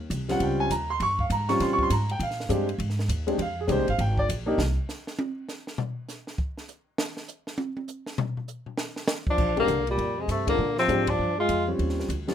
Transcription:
0.10 upright bass C2, hi-hat pedal, ride
0.28 grand piano G3 C4 C#4 F4 F#5, snare, ride
0.40 upright bass C#2, grand piano G5, ride
0.60 grand piano G#5
0.70 upright bass D#2, grand piano A#5, hi-hat pedal, ride
0.90 grand piano C6
1.00 upright bass G2, grand piano C#6, ride
1.19 grand piano F5, kick
1.30 upright bass G#2, grand piano A#5, hi-hat pedal, ride
1.49 grand piano G3 C4 C#4 F4 C#6, snare, ride
1.60 upright bass A#2, grand piano C6, snare, ride
1.73 grand piano C#6
1.79 kick
1.83 grand piano C6
1.90 upright bass G#2, grand piano A#5, hi-hat pedal, ride
2.09 grand piano G5, ride
2.19 upright bass A#2, grand piano F5, ride
2.31 snare
2.40 snare
2.49 upright bass G2, grand piano G#3 C4 D4 G4, hi-hat pedal, ride
2.69 ride
2.78 upright bass G#2, ride
2.90 snare
2.99 snare
3.08 upright bass D#2, hi-hat pedal, ride
3.27 grand piano G#3 C4 D4 G4, ride
3.38 upright bass F2, grand piano F5, ride
3.61 grand piano G#4
3.67 upright bass C2, grand piano G#3 C4 D4 G4, hi-hat pedal, ride
3.72 grand piano C5
3.79 upright bass A#1
3.88 upright bass G#1, grand piano F5, ride
3.98 upright bass G#1, grand piano G5, ride
4.17 grand piano D5, kick
4.29 upright bass A#1, hi-hat pedal, ride
4.46 grand piano A#3 D4 D#4 G4
4.58 upright bass C2, snare
4.89 snare, hi-hat pedal
5.07 snare
5.19 high tom
5.49 snare, hi-hat pedal
5.67 snare
5.78 floor tom
6.08 snare, hi-hat pedal
6.27 snare
6.38 kick
6.58 snare
6.68 hi-hat pedal
6.98 snare
7.17 snare
7.28 hi-hat pedal
7.47 snare
7.58 high tom
7.77 high tom
7.88 hi-hat pedal
8.06 snare
8.18 floor tom
8.37 floor tom
8.48 hi-hat pedal
8.66 floor tom
8.78 snare
8.96 snare
9.08 snare, hi-hat pedal
9.27 trombone F3, tenor saxophone D4, kick
9.38 upright bass A#1, kick, crash
9.56 trombone D3, grand piano G#3 C4 D4 G4, tenor saxophone A#3, ride
9.68 upright bass C2, hi-hat pedal, ride
9.87 trombone A#2, tenor saxophone G3, ride
9.98 upright bass F2, ride
10.18 trombone C3, tenor saxophone G#3
10.28 upright bass G2, trombone C3, tenor saxophone A3, hi-hat pedal, ride
10.47 trombone D3, grand piano G#3 C4 D4 F4, tenor saxophone A#3, kick, ride
10.58 upright bass A#2
10.78 trombone F3, tenor saxophone C4, snare
10.88 upright bass G#2, grand piano G#3 C4 D4 G4, hi-hat pedal, ride
11.07 trombone F3, tenor saxophone D4, kick, ride
11.19 upright bass G2
11.38 trombone G#3, tenor saxophone F4
11.49 upright bass F2, hi-hat pedal, ride
11.67 grand piano G3 C4 C#4 F4
11.79 upright bass D#2, ride
11.89 snare
12.00 snare
12.09 upright bass D2, hi-hat pedal, ride
12.27 grand piano G3 C4 C#4 F4, snare, ride

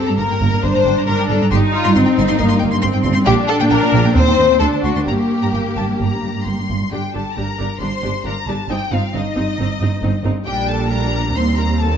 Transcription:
Already playing: viola section C4, violin section A4
0.06 cello section G2, violin section A#5
0.18 double bass section G1, cello section G2, viola section A#3, violin section A#4 A#5
0.31 cello section G2, violin section G5
0.41 double bass section G1, cello section G2, violin section A#5
0.51 cello section G2, violin section A#5
0.63 double bass section G1, cello section G2, viola section D4, violin section C5 A#5
0.75 cello section G2, violin section A#5
0.86 double bass section G1, cello section G2, violin section G5
0.97 cello section G2, violin section A#5
1.07 double bass section G1, cello section G2, viola section D4, violin section A#4 A#5
1.18 cello section G2, violin section G5
1.29 double bass section G1, cello section G2, violin section A4 A#5
1.41 cello section G2, violin section A#5
1.51 double bass section G1, cello section G2, viola section D#4, violin section G4 C6
1.74 violin section F4
1.84 cello section G2, violin section C6
1.96 double bass section G1, cello section G2, viola section C4, violin section D#4 C6
2.05 cello section G2, violin section G5
2.18 double bass section G1, cello section G2, violin section C6
2.28 cello section G2, violin section C6
2.38 double bass section G1, cello section G2, viola section A#3, violin section C6
2.48 cello section G2, violin section C6
2.59 double bass section G1, cello section G2, violin section G5
2.71 cello section G2, violin section C6
2.82 double bass section G1, cello section G2, viola section C4, violin section C6
2.93 cello section G2, violin section G5
3.04 double bass section G1, cello section G2, violin section C6
3.14 cello section G2, violin section C6
3.25 double bass section A#1, cello section A#2, viola section D4, violin section G4 G5
3.48 violin section A4
3.59 cello section A#2, violin section G5
3.69 double bass section A#1, cello section A#2, violin section A#4 G5
3.82 cello section A#2, violin section D5
3.93 double bass section A#1, cello section A#2, violin section G5
4.05 cello section A#2, violin section G5
4.14 double bass section D#2, cello section D#2, viola section C4, violin section C5 G5
4.27 cello section D#2, violin section G5
4.38 double bass section D#2, cello section D#2, violin section D#5
4.50 cello section D#2, violin section G5
4.60 cello section D2, double bass section D2, viola section D4, violin section A4 C6
4.72 cello section D2, violin section A5
4.82 cello section D2, double bass section D2, violin section F#4 C6
4.96 cello section D2, violin section C6
5.05 double bass section G1, cello section G2, viola section A#3, violin section G4 A#5
5.42 cello section G2, violin section A#5
5.54 double bass section G1, cello section G2, violin section G5
5.67 cello section G2
5.76 double bass section G1, cello section G2, violin section A5
5.90 cello section G2
6.00 double bass section G1, cello section G2, violin section A#5
6.12 cello section G2
6.23 double bass section G1, cello section G2
6.36 cello section G2
6.46 double bass section G1, cello section G2, violin section C6
6.58 cello section G2
6.70 double bass section G1, cello section G2
6.82 cello section G2
6.92 double bass section G1, cello section G2, viola section D4 G4, violin section G4 G5
7.14 double bass section G1, cello section G2, viola section D4 G4, violin section A4 A5
7.36 double bass section G1, cello section G2, viola section D4 G4, violin section A#4 A#5
7.59 double bass section G1, cello section G2, viola section D4 G4
7.80 double bass section G1, cello section G2, viola section D4 G4, violin section C5 C6
8.03 double bass section G1, cello section G2, viola section D4 G4
8.25 double bass section G1, cello section G2, viola section D4 G4, violin section A#4 A#5
8.47 double bass section G1, cello section G2, viola section D4 G4, violin section A4 A5
8.69 double bass section G1, cello section G2, viola section C4 D#4, violin section G4 G5
8.92 double bass section G1, cello section G2, viola section C4 D#4, violin section F4 F5
9.14 double bass section G1, cello section G2, viola section C4 D#4, violin section D#4 D#5
9.36 double bass section G1, cello section G2, viola section C4 D#4
9.59 double bass section G1, cello section G2, viola section C4 D#4
9.80 double bass section G1, cello section G2, viola section C4 D#4
10.02 double bass section G1, cello section G2, viola section C4 D#4
10.24 double bass section G1, cello section G2, viola section C4 D#4
10.46 double bass section A#1, cello section A#2, viola section G3 D4, violin section G4 G5
10.68 violin section A4 A5
10.90 viola section G3 D4, violin section A#4 A#5
11.34 double bass section D#2, cello section D#2, viola section G3 C4, violin section C5 C6
11.57 violin section A#4 A#5
11.79 violin section A4 A5

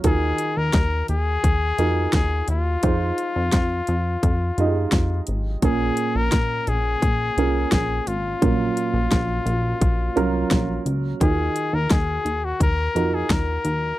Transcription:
0.04 analog synth bass D#2, upright piano D#3 D#4 F4 F#4 A#4, trumpet G#4, kick, closed hi-hat
0.38 closed hi-hat
0.57 analog synth bass D#2, trumpet A#4
0.73 analog synth bass D#2, kick, snare, closed hi-hat
1.08 analog synth bass D#2, trumpet G#4, closed hi-hat
1.44 analog synth bass D#2, kick, closed hi-hat
1.78 analog synth bass F2, upright piano D#4 F4 F#4 A#4, closed hi-hat
2.13 analog synth bass D#2, trumpet G#4, kick, snare, closed hi-hat
2.48 analog synth bass D#2, trumpet F4, closed hi-hat
2.83 analog synth bass F2, upright piano D#4 F4 G#4 C5, kick, closed hi-hat
3.18 closed hi-hat
3.36 analog synth bass F2
3.52 analog synth bass F2, kick, snare, closed hi-hat
3.87 analog synth bass F2, closed hi-hat
4.23 analog synth bass F2, kick, closed hi-hat
4.58 analog synth bass F#2, upright piano D#4 F4 G4 D#5, closed hi-hat
4.66 upright piano G#4
4.92 analog synth bass F2, kick, snare, closed hi-hat
5.27 analog synth bass G#1, closed hi-hat
5.62 analog synth bass A#1, upright piano A#2 C#4 F4 G#4 A#4, trumpet G#4, kick, closed hi-hat
5.97 closed hi-hat
6.15 analog synth bass A#1, trumpet A#4
6.32 analog synth bass A#1, kick, snare, closed hi-hat
6.67 analog synth bass A#1, trumpet G#4, closed hi-hat
7.02 analog synth bass A#1, kick, closed hi-hat
7.37 analog synth bass C2, upright piano C#4 F4 G#4 A#4, closed hi-hat
7.72 analog synth bass A#1, trumpet G#4, kick, snare, closed hi-hat
8.07 analog synth bass G#1, trumpet F4, closed hi-hat
8.42 analog synth bass A#1, upright piano A#2 F#3 C#4 F4 A#4, kick, closed hi-hat
8.77 closed hi-hat
8.94 analog synth bass A#1
9.11 analog synth bass A#1, kick, snare, closed hi-hat
9.46 analog synth bass A#1, closed hi-hat
9.81 analog synth bass A#1, kick, closed hi-hat
10.16 analog synth bass C2, upright piano F#3 C#4 F4 A#4, closed hi-hat
10.51 analog synth bass A#1, kick, snare, closed hi-hat
10.86 analog synth bass C#2, closed hi-hat
11.21 analog synth bass D#2, upright piano D#3 D#4 F4 F#4 A#4, trumpet G#4, kick, closed hi-hat
11.56 closed hi-hat
11.73 analog synth bass D#2, trumpet A#4
11.90 analog synth bass D#2, trumpet G#4, kick, snare, closed hi-hat
12.25 analog synth bass D#2, closed hi-hat
12.45 trumpet F#4
12.60 analog synth bass D#2, trumpet A#4, kick, closed hi-hat
12.95 analog synth bass F2, upright piano D#4 F4 F#4 A#4, closed hi-hat
13.14 trumpet G#4
13.30 analog synth bass D#2, trumpet A#4, kick, snare, closed hi-hat
13.65 analog synth bass D#2, closed hi-hat

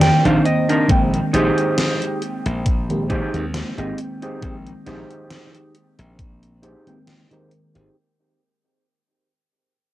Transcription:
Already playing: fm electric piano D#3 A#3 C4 G4 D5
0.01 clean electric guitar G5, snare, closed hi-hat
0.24 slap bass A#1, fm electric piano D#3 A#3 C4 C5, clean electric guitar D4 D#4 C5 F5, closed hi-hat
0.46 clean electric guitar D#5, closed hi-hat
0.69 clean electric guitar D4 D#4 A#4, closed hi-hat
0.88 slap bass A#1, fm electric piano D#3 G#3 A#3 C4 G5, kick, closed hi-hat
1.14 closed hi-hat
1.33 slap bass A#1, clean electric guitar D#4 G4 G#4 C5, closed hi-hat
1.58 closed hi-hat
1.78 snare, closed hi-hat
2.02 closed hi-hat
2.22 closed hi-hat
2.46 slap bass A#1, closed hi-hat
2.66 kick, closed hi-hat
2.89 fm electric piano D#3 G#3 A#3 C4 G4, closed hi-hat
3.10 clean electric guitar D#4 G4 G#4 C5, kick, closed hi-hat
3.33 slap bass D#2, fm electric piano D#3 G#3 A#3 C4, closed hi-hat
3.54 snare, closed hi-hat
3.77 slap bass G#1, fm electric piano D#3 G#3 A#3 C4 G5, clean electric guitar D#4 G4 G#4 D#5, closed hi-hat
3.98 closed hi-hat
4.22 clean electric guitar D#4 G4 G#4 C5, closed hi-hat
4.41 slap bass A#1, fm electric piano D#3 G#3 A#3 C4 G5, kick, closed hi-hat
4.67 closed hi-hat
4.86 slap bass A#1, clean electric guitar D#4 G4 G#4 C5, snare, closed hi-hat
5.11 closed hi-hat
5.31 snare, closed hi-hat
5.55 closed hi-hat
5.75 closed hi-hat
5.99 slap bass A#1, closed hi-hat
6.19 kick, closed hi-hat
6.43 closed hi-hat
6.62 clean electric guitar D#4 G4 G#4 C5, closed hi-hat
6.86 fm electric piano D#3 G#3 A#3 C4 G5, closed hi-hat
7.07 snare, closed hi-hat
7.30 fm electric piano D#3 G#3 A#3 C4 A#4, clean electric guitar D#4 G4 G#4 C5, closed hi-hat
7.51 closed hi-hat
7.75 slap bass G#1, clean electric guitar D#4 G4 G#4 C5, closed hi-hat

